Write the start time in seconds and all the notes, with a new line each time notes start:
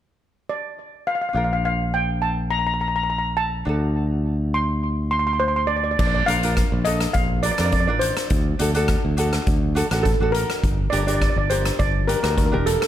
0.49 D5
1.07 F5
1.15 F5
1.22 F5
1.29 F5
1.33 A#1 D4 F4 A#4 F5
1.44 F5
1.53 F5
1.65 F5
1.94 G5
2.22 A5
2.51 A#5
2.59 A#5
2.67 A#5
2.74 A#5
2.81 A#5
2.88 A#5
2.96 A#5
3.03 A#5
3.10 A#5
3.19 A#5
3.37 A5
3.65 D2 D4 F#4 A4
4.54 C6
5.11 C6
5.19 C6
5.27 C6
5.33 C6
5.40 C5 C6
5.48 C6
5.56 C6
5.67 D5
5.77 D5
5.84 D5
5.91 D5
5.99 A#1 D5, kick, crash
6.07 D5
6.14 D5
6.26 A#1 D4 F4 A#4 F5, closed hi-hat
6.43 D4 F4 A#4, closed hi-hat
6.57 kick, cross-stick, closed hi-hat
6.72 A#1
6.85 D4 F4 A4 D#5, closed hi-hat
7.01 cross-stick, closed hi-hat
7.13 A#1 F5, kick, closed hi-hat
7.43 D4 F4 A#4 D5, closed hi-hat
7.52 D5
7.58 F2 D4 F4 A#4 D5, cross-stick, closed hi-hat
7.66 D5
7.72 D5, kick, closed hi-hat
7.80 D5
7.88 A1 D4 F4 A#4 D5
7.99 C5, closed hi-hat
8.17 cross-stick, closed hi-hat
8.30 D2, kick, closed hi-hat
8.59 D2 D4 F#4 A4, closed hi-hat
8.74 D4 F#4 A4, closed hi-hat
8.88 kick, cross-stick, closed hi-hat
9.05 D2
9.17 D4 F#4 A4, closed hi-hat
9.33 cross-stick, closed hi-hat
9.47 D2, kick, closed hi-hat
9.75 D4 F#4 A4, closed hi-hat
9.91 A1 D4 F#4 A4, cross-stick, closed hi-hat
10.03 A4, kick, closed hi-hat
10.20 A1 D4 F#4 A4
10.32 A#4, closed hi-hat
10.50 cross-stick, closed hi-hat
10.63 G1, kick, closed hi-hat
10.90 G1 D4 G4 A#4 D5, closed hi-hat
10.98 D5
11.07 D4 G4 A#4 D5, closed hi-hat
11.14 D5
11.22 D5, kick, cross-stick, closed hi-hat
11.30 D5
11.36 G1 D5
11.50 D4 G4 A#4 C5, closed hi-hat
11.65 cross-stick, closed hi-hat
11.79 G1 D5, kick, closed hi-hat
12.08 D4 G4 A#4, closed hi-hat
12.16 A#4
12.23 D2 D4 G4 A#4, cross-stick, closed hi-hat
12.30 A#4
12.38 A#4, kick, closed hi-hat
12.46 A#4
12.52 E1 D4 G4 A#4
12.66 A4, closed hi-hat
12.73 A4
12.81 A4, cross-stick, closed hi-hat